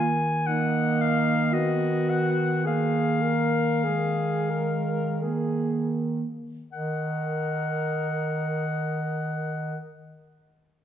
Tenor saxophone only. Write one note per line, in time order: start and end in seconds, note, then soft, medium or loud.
0.00 0.19 F4 medium
0.46 1.54 D#4 medium
1.53 2.64 F#4 medium
2.65 3.23 G#4 soft
3.22 3.85 A#4 soft
3.84 4.52 G#4 medium
4.50 5.24 A#4 soft
5.22 5.98 G#4 soft
6.72 9.77 A#4 soft